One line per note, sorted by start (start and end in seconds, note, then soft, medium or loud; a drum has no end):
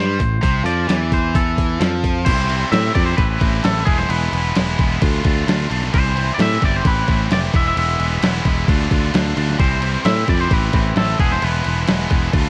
0.00 0.17 G2 loud
0.00 0.19 G3 medium
0.00 0.42 C5 medium
0.19 0.41 A1 medium
0.19 0.38 A2 medium
0.19 kick medium
0.19 open hi-hat medium
0.41 0.64 C2 medium
0.41 0.64 C3 loud
0.41 0.64 C5 medium
0.41 kick medium
0.41 open hi-hat medium
0.64 0.86 F2 loud
0.64 0.87 F3 medium
0.64 1.13 D5 loud
0.64 open hi-hat medium
0.88 1.77 E2 medium
0.88 1.79 E3 loud
0.88 snare loud
0.88 open hi-hat medium
1.12 1.36 C5 medium
1.12 kick medium
1.12 open hi-hat medium
1.35 2.00 A4 medium
1.35 kick loud
1.35 open hi-hat medium
1.58 kick medium
1.58 open hi-hat medium
1.80 2.28 F2 medium
1.80 2.26 F3 medium
1.80 snare loud
1.80 open hi-hat medium
2.03 kick medium
2.03 open hi-hat medium
2.25 2.63 C2 medium
2.25 2.46 C3 medium
2.25 2.47 G3 loud
2.25 2.47 C4 loud
2.25 2.48 E4 loud
2.25 2.71 C5 loud
2.25 2.69 C6 medium
2.25 kick loud
2.25 crash loud
2.25 crash medium
2.47 2.69 C3 medium
2.47 2.70 G3 medium
2.47 2.70 C4 medium
2.47 2.71 E4 medium
2.47 crash medium
2.70 2.90 A2 medium
2.70 2.93 C3 medium
2.70 2.94 G3 medium
2.70 2.94 C4 medium
2.70 2.95 E4 medium
2.70 2.94 E5 loud
2.70 2.93 E6 medium
2.70 snare loud
2.70 crash medium
2.94 3.13 F2 medium
2.94 3.16 C3 medium
2.94 3.17 G3 medium
2.94 3.17 C4 medium
2.94 3.17 E4 medium
2.94 3.05 D5 loud
2.94 3.06 D6 medium
2.94 kick medium
2.94 snare soft
2.94 crash medium
3.06 3.17 C5 loud
3.06 3.17 C6 medium
3.16 3.36 A1 medium
3.16 3.38 A2 medium
3.16 3.40 E3 medium
3.16 3.40 A3 loud
3.16 3.40 C4 medium
3.16 3.41 E4 loud
3.16 3.65 B4 loud
3.16 3.60 B5 medium
3.16 kick loud
3.16 crash medium
3.40 3.60 A1 medium
3.40 3.62 A2 medium
3.40 3.63 E3 medium
3.40 3.63 A3 medium
3.40 3.63 C4 medium
3.40 3.65 E4 medium
3.40 kick medium
3.40 crash medium
3.63 3.83 A1 loud
3.63 3.85 A2 medium
3.63 3.85 E3 loud
3.63 3.86 A3 loud
3.63 3.86 C4 loud
3.63 3.88 E4 loud
3.63 3.85 A4 medium
3.63 3.85 A5 medium
3.63 snare loud
3.63 crash medium
3.86 4.05 E1 medium
3.86 4.09 E3 medium
3.86 4.09 G#3 medium
3.86 4.09 B3 loud
3.86 4.10 E4 loud
3.86 3.98 G#4 loud
3.86 3.97 G#5 medium
3.86 kick loud
3.86 crash medium
3.98 4.10 C5 medium
3.98 4.09 C6 medium
3.98 snare soft
4.09 4.28 E1 loud
4.09 4.32 E3 loud
4.09 4.32 G#3 loud
4.09 4.33 B3 loud
4.09 4.34 E4 loud
4.09 5.48 B4 medium
4.09 5.48 B5 medium
4.09 crash medium
4.33 4.51 E1 loud
4.33 4.56 E3 medium
4.33 4.55 G#3 medium
4.33 4.56 B3 medium
4.33 4.57 E4 loud
4.33 crash medium
4.56 4.75 E1 medium
4.56 4.79 E3 medium
4.56 4.79 G#3 medium
4.56 4.79 B3 loud
4.56 4.80 E4 loud
4.56 snare loud
4.56 crash medium
4.79 4.97 E1 medium
4.79 5.01 E3 medium
4.79 5.01 G#3 medium
4.79 5.01 B3 loud
4.79 5.03 E4 loud
4.79 kick medium
4.79 crash medium
5.02 5.20 D2 loud
5.02 5.23 D3 medium
5.02 5.24 A3 loud
5.02 5.24 D4 loud
5.02 5.25 F4 loud
5.02 kick loud
5.02 crash loud
5.24 5.43 D2 medium
5.24 5.46 D3 medium
5.24 5.46 A3 medium
5.24 5.47 D4 medium
5.24 5.47 F4 medium
5.24 kick loud
5.24 crash medium
5.47 5.66 D2 loud
5.47 5.68 D3 medium
5.47 5.69 A3 medium
5.47 5.70 D4 loud
5.47 5.70 F4 medium
5.47 snare loud
5.47 crash medium
5.70 5.89 B1 medium
5.70 5.92 D3 medium
5.70 5.92 A3 medium
5.70 5.92 D4 loud
5.70 5.92 F4 medium
5.70 crash medium
5.83 snare soft
5.92 6.30 C2 loud
5.92 6.14 C3 loud
5.92 6.15 E3 loud
5.92 6.15 G3 loud
5.92 6.15 C4 loud
5.92 6.17 E4 loud
5.92 6.34 C5 loud
5.92 6.31 C6 medium
5.92 kick loud
5.92 crash medium
6.15 6.37 C3 medium
6.15 6.38 E3 medium
6.15 6.38 G3 loud
6.15 6.38 C4 loud
6.15 6.39 E4 medium
6.15 crash medium
6.33 6.40 D5 medium
6.33 6.39 D6 medium
6.38 6.57 A2 medium
6.38 6.59 C3 loud
6.38 6.60 E3 loud
6.38 6.60 G3 medium
6.38 6.60 C4 medium
6.38 6.62 E4 loud
6.38 6.64 E5 loud
6.38 6.61 E6 medium
6.38 snare loud
6.38 crash medium
6.60 6.80 G1 medium
6.60 6.82 C3 medium
6.60 6.83 E3 medium
6.60 6.83 G3 medium
6.60 6.83 C4 medium
6.60 6.84 E4 medium
6.60 6.74 D6 medium
6.60 kick medium
6.60 crash medium
6.65 6.76 D5 medium
6.76 6.87 C5 medium
6.76 6.87 C6 medium
6.83 7.03 A1 loud
6.83 7.05 A2 loud
6.83 7.06 E3 loud
6.83 7.06 A3 medium
6.83 7.06 C4 medium
6.83 7.08 E4 loud
6.83 kick loud
6.83 crash medium
6.87 7.29 B4 loud
6.87 7.29 B5 medium
7.06 7.26 A1 medium
7.06 7.28 A2 medium
7.06 7.29 E3 medium
7.06 7.29 A3 loud
7.06 7.29 C4 medium
7.06 7.31 E4 loud
7.06 kick medium
7.06 crash medium
7.30 7.49 F1 medium
7.30 7.52 A2 loud
7.30 7.52 E3 loud
7.30 7.53 A3 loud
7.30 7.53 C4 loud
7.30 7.54 E4 medium
7.30 7.39 D5 loud
7.30 snare loud
7.30 crash medium
7.34 7.43 D6 medium
7.53 7.72 E1 medium
7.53 7.75 E3 medium
7.53 7.75 G#3 medium
7.53 7.75 B3 loud
7.53 7.76 E4 loud
7.53 7.66 E5 loud
7.53 7.66 E6 medium
7.53 kick loud
7.53 crash medium
7.67 7.77 E5 medium
7.67 7.76 E6 medium
7.75 7.95 E1 loud
7.75 7.99 E3 medium
7.75 7.98 G#3 loud
7.75 7.99 B3 loud
7.75 8.00 E4 loud
7.75 9.11 E5 medium
7.75 9.10 E6 medium
7.75 crash medium
7.98 8.17 E1 loud
7.98 8.21 E3 medium
7.98 8.20 G#3 medium
7.98 8.21 B3 medium
7.98 8.22 E4 medium
7.98 crash medium
8.21 8.40 E1 medium
8.21 8.44 E3 medium
8.21 8.43 G#3 medium
8.21 8.44 B3 loud
8.21 8.45 E4 medium
8.21 snare loud
8.21 crash loud
8.44 8.64 E1 medium
8.44 8.67 E3 medium
8.44 8.67 G#3 medium
8.44 8.67 B3 medium
8.44 8.68 E4 loud
8.44 kick medium
8.44 snare soft
8.44 crash medium
8.67 8.86 D2 loud
8.67 8.90 D3 medium
8.67 8.90 A3 loud
8.67 8.90 D4 loud
8.67 8.91 F4 loud
8.67 kick loud
8.67 crash medium
8.91 9.09 D2 medium
8.91 9.11 D3 loud
8.91 9.12 A3 medium
8.91 9.12 D4 loud
8.91 9.12 F4 loud
8.91 kick medium
8.91 crash medium
9.12 9.32 D2 medium
9.12 9.35 D3 medium
9.12 9.36 A3 medium
9.12 9.36 D4 loud
9.12 9.36 F4 loud
9.12 snare loud
9.12 crash medium
9.36 9.55 D2 medium
9.36 9.58 D3 medium
9.36 9.59 A3 medium
9.36 9.59 D4 medium
9.36 9.59 F4 medium
9.36 crash medium
9.50 snare soft
9.58 9.96 C2 medium
9.58 9.80 C3 loud
9.58 9.81 E3 loud
9.58 9.81 G3 loud
9.58 9.82 C4 loud
9.58 9.83 E4 loud
9.58 10.05 C5 loud
9.58 10.02 C6 medium
9.58 kick loud
9.58 crash medium
9.82 10.03 C3 medium
9.82 10.05 E3 medium
9.82 10.04 G3 medium
9.82 10.05 C4 medium
9.82 10.06 E4 medium
9.82 crash medium
10.05 10.23 A2 medium
10.05 10.26 C3 medium
10.05 10.28 E3 medium
10.05 10.28 G3 medium
10.05 10.28 C4 medium
10.05 10.29 E4 medium
10.05 10.29 E5 loud
10.05 10.27 E6 medium
10.05 snare loud
10.05 crash medium
10.27 10.46 F2 medium
10.27 10.50 C3 medium
10.27 10.50 E3 medium
10.27 10.50 G3 medium
10.27 10.50 C4 medium
10.27 10.51 E4 loud
10.27 10.40 D5 medium
10.27 10.40 D6 medium
10.27 kick medium
10.27 snare soft
10.27 crash medium
10.41 10.53 C5 medium
10.41 10.51 C6 medium
10.50 10.69 A1 loud
10.50 10.72 A2 medium
10.50 10.73 E3 loud
10.50 10.72 A3 medium
10.50 10.73 C4 loud
10.50 10.74 E4 loud
10.50 10.98 B4 loud
10.50 10.97 B5 medium
10.50 kick loud
10.50 crash medium
10.73 10.92 A1 medium
10.73 10.94 A2 loud
10.73 10.95 E3 medium
10.73 10.95 A3 loud
10.73 10.95 C4 medium
10.73 10.97 E4 loud
10.73 kick medium
10.73 crash medium
10.96 11.14 A1 loud
10.96 11.18 A2 medium
10.96 11.18 E3 medium
10.96 11.18 A3 loud
10.96 11.18 C4 medium
10.96 11.20 E4 loud
10.96 11.18 A4 loud
10.96 11.19 A5 medium
10.96 snare loud
10.96 crash medium
11.18 11.38 E1 medium
11.18 11.41 E3 medium
11.18 11.41 G#3 medium
11.18 11.41 B3 loud
11.18 11.42 E4 loud
11.18 11.32 G#4 medium
11.18 11.31 G#5 medium
11.18 kick loud
11.18 crash medium
11.32 11.44 C5 loud
11.32 11.42 C6 medium
11.32 snare soft
11.41 11.60 E1 loud
11.41 11.64 E3 loud
11.41 11.63 G#3 loud
11.41 11.64 B3 loud
11.41 11.65 E4 loud
11.41 12.49 B4 medium
11.41 12.49 B5 medium
11.41 crash medium
11.64 11.84 E1 loud
11.64 11.86 E3 medium
11.64 11.86 G#3 medium
11.64 11.86 B3 medium
11.64 11.87 E4 loud
11.64 crash medium
11.86 12.06 E1 medium
11.86 12.09 E3 medium
11.86 12.09 G#3 medium
11.86 12.09 B3 loud
11.86 12.10 E4 medium
11.86 snare loud
11.86 crash medium
12.09 12.29 E1 medium
12.09 12.31 E3 medium
12.09 12.32 G#3 medium
12.09 12.32 B3 medium
12.09 12.33 E4 medium
12.09 kick medium
12.09 crash medium
12.32 12.49 D2 loud
12.32 12.49 D3 medium
12.32 12.49 A3 loud
12.32 12.49 D4 loud
12.32 12.49 F4 loud
12.32 kick loud
12.32 crash loud